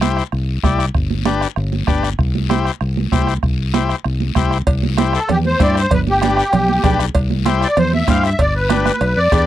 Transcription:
Already playing: C2
0.01 E4 G4 C5, bombo rim, high conga, short guiro
0.17 bombo rim, short guiro
0.32 C2, bombo rim, high conga, long guiro
0.63 C2 E4 G4 D5, bombo low, bombo rim, high conga, short guiro
0.79 bombo rim, short guiro
0.94 G1, bombo low, bombo rim, high conga, long guiro
1.10 high conga
1.25 D4 G4 B4, bombo rim, high conga, short guiro
1.41 bombo rim, short guiro
1.56 G1, bombo rim, high conga, long guiro
1.73 high conga
1.87 G1 D4 G4 B4, bombo low, bombo rim, high conga, short guiro
2.03 bombo rim, short guiro
2.19 C2, bombo low, bombo rim, high conga, long guiro
2.35 high conga
2.49 E4 G4 C5, bombo rim, high conga, short guiro
2.65 bombo rim, short guiro
2.81 C2, bombo rim, high conga, long guiro
2.97 high conga
3.12 C2 E4 G4 C5, bombo low, bombo rim, high conga, short guiro
3.27 bombo rim, short guiro
3.43 C2, bombo low, bombo rim, high conga, long guiro
3.74 E4 G4 C5, bombo rim, high conga, short guiro
3.89 bombo rim, short guiro
4.04 C2, bombo rim, high conga, long guiro
4.20 high conga
4.35 C2 E4 G4 C5, bombo low, bombo rim, high conga, short guiro
4.51 bombo rim, short guiro
4.67 C2, bombo low, bombo rim, cowbell, high conga, long guiro
4.83 high conga
4.97 E4 G4 C5, bombo rim, cowbell, high conga, short guiro
5.13 A4, bombo rim, short guiro
5.29 E2 G4, bombo rim, cowbell, high conga, low conga, long guiro
5.45 C5, high conga
5.60 G2 E4 G4 C5 D5, bombo low, bombo rim, cowbell, high conga, short guiro
5.75 C5, bombo rim, short guiro
5.91 G1 B4, bombo low, bombo rim, cowbell, high conga, low conga, long guiro
6.07 G4, high conga
6.22 D4 G4 B4, bombo rim, cowbell, high conga, short guiro
6.37 bombo rim, short guiro
6.53 B1, bombo rim, cowbell, high conga, low conga, long guiro
6.69 high conga
6.83 B1 D4 G4 B4, bombo low, bombo rim, cowbell, high conga, low conga, low timbale, short guiro
6.99 bombo rim, short guiro
7.15 C2, bombo low, bombo rim, cowbell, high conga, long guiro
7.30 high conga
7.45 E4 G4 C5, bombo rim, cowbell, high conga, short guiro
7.61 D5, bombo rim, short guiro
7.77 E2 C5, bombo rim, cowbell, high conga, low conga, long guiro
7.93 E5, high conga
8.07 G2 E4 G4 C5 F5, bombo low, bombo rim, cowbell, high conga, short guiro
8.23 E5, bombo rim, short guiro
8.39 G1 D5, bombo low, bombo rim, cowbell, high conga, long guiro
8.56 B4
8.70 D4 G4 B4, bombo rim, cowbell, high conga, short guiro
8.86 bombo rim, high conga, short guiro
9.01 B1, bombo rim, cowbell, long guiro
9.16 F2 D5
9.32 E2 D4 G4 B4, bombo low, bombo rim, cowbell, low timbale, short guiro

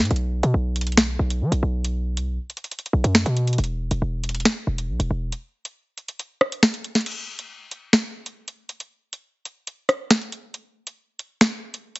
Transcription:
0.00 A2
0.05 closed hi-hat
0.11 B1, closed hi-hat
0.16 closed hi-hat
0.43 B2, closed hi-hat
0.54 B1
0.76 closed hi-hat
0.81 closed hi-hat
0.87 closed hi-hat
0.92 closed hi-hat
0.97 finger snap, snare, closed hi-hat
1.19 B1
1.30 closed hi-hat
1.41 F#3
1.52 B1, closed hi-hat
1.63 B1
1.85 closed hi-hat
2.17 C2, closed hi-hat
2.28 B1
2.50 closed hi-hat
2.57 closed hi-hat
2.64 closed hi-hat
2.71 closed hi-hat
2.79 closed hi-hat
2.86 closed hi-hat
2.93 B1
3.04 F#2, closed hi-hat
3.15 finger snap, snare
3.26 B2, closed hi-hat
3.37 closed hi-hat
3.47 closed hi-hat
3.53 closed hi-hat
3.58 E1, closed hi-hat
3.64 closed hi-hat
3.91 E1, closed hi-hat
4.02 E1
4.24 closed hi-hat
4.29 closed hi-hat
4.35 closed hi-hat
4.40 closed hi-hat
4.45 finger snap, snare, closed hi-hat
4.67 E1
4.78 closed hi-hat
4.89 B1
5.00 E1, closed hi-hat
5.11 E1
5.32 closed hi-hat
5.65 closed hi-hat
5.98 closed hi-hat
6.08 closed hi-hat
6.19 closed hi-hat
6.41 cross-stick
6.52 closed hi-hat
6.63 finger snap, snare
6.74 closed hi-hat
6.84 closed hi-hat
6.95 snare, closed hi-hat
7.01 closed hi-hat
7.06 closed hi-hat, crash
7.12 closed hi-hat
7.39 closed hi-hat
7.71 closed hi-hat
7.93 finger snap, snare, closed hi-hat
8.26 closed hi-hat
8.48 closed hi-hat
8.69 closed hi-hat
8.80 closed hi-hat
9.13 closed hi-hat
9.45 closed hi-hat
9.67 closed hi-hat
9.89 cross-stick, closed hi-hat
10.11 finger snap, snare
10.21 closed hi-hat
10.32 closed hi-hat
10.54 closed hi-hat
10.87 closed hi-hat
11.19 closed hi-hat
11.41 finger snap, snare, closed hi-hat
11.74 closed hi-hat
11.96 closed hi-hat

